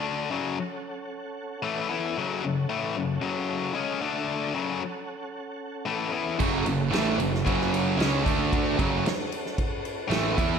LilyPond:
<<
  \new Staff \with { instrumentName = "Tonewheel organ" } { \time 4/4 \key fis \minor \tempo 4 = 113 << { <d' a''>8 <cis' fis''>2.~ <cis' fis''>8~ | <cis' fis''>2.~ <cis' fis''>8 <d' a''>8~ | <d' a''>8 <cis' fis''>2.~ <cis' fis''>8~ | <cis' fis''>2.~ <cis' fis''>8 <d' a''>8~ |
<d' a''>8 <cis' fis''>2.~ <cis' fis''>8 | } \\ { a'1~ | a'1~ | a'1~ | a'1~ |
a'1 | } >> }
  \new Staff \with { instrumentName = "Distorted electric guitar" } { \clef bass \time 4/4 \key fis \minor <d a d'>8 <fis, cis fis>8 r2 <a, e a>8 <e b e'>8 | <fis, cis fis>8 <fis, cis>8 <a, e a>8 <fis, cis>8 <fis, cis fis>4 <cis gis cis'>8 <d a d'>8~ | <d a d'>8 <fis, cis fis>8 r2 <a, e a>8 <e b e'>8 | <fis, cis fis>8 <fis, cis>8 <a, e a>8 <fis, cis>8 <fis, cis fis>4 <cis gis cis'>8 <d a d'>8~ |
<d a d'>8 <fis, cis fis>8 r2 <a, e a>8 <e b e'>8 | }
  \new Staff \with { instrumentName = "Distorted electric guitar" } { \clef bass \time 4/4 \key fis \minor r1 | r1 | r1 | <fis, cis fis>8 <fis, cis>8 <a, e a>8 <fis, cis>8 <fis, cis fis>4 <cis gis cis'>8 <d a d'>8~ |
<d a d'>8 <fis, cis fis>8 r2 <a, e a>8 <e b e'>8 | }
  \new Staff \with { instrumentName = "Distorted electric guitar" } { \clef bass \time 4/4 \key fis \minor r1 | r1 | r1 | <fis, cis fis>8 <fis, cis>8 <a, e a>8 <fis, cis>8 <fis, cis fis>4 <cis gis cis'>8 <d a d'>8~ |
<d a d'>8 <fis, cis fis>8 r2 <a, e a>8 <e b e'>8 | }
  \new Staff \with { instrumentName = "Picked electric bass" } { \clef bass \time 4/4 \key fis \minor r1 | r1 | r1 | fis,,8 fis,,8 a,,8 fis,,8 fis,,4 cis,8 d,8~ |
d,8 fis,,8 r2 a,,8 e,8 | }
  \new DrumStaff \with { instrumentName = "Drums" } \drummode { \time 4/4 r4 r4 r4 r4 | r4 r4 r4 r4 | r4 r4 r4 r4 | <cymc bd>8 cymr8 <cymr sn>8 cymr16 sn16 <bd cymr>16 sn16 cymr8 <cymr sn>8 <bd cymr>8 |
<bd cymr>8 <bd cymr>8 <cymr sn>8 cymr16 sn16 <bd cymr>8 cymr8 <cymr sn>8 <bd cymr>8 | }
>>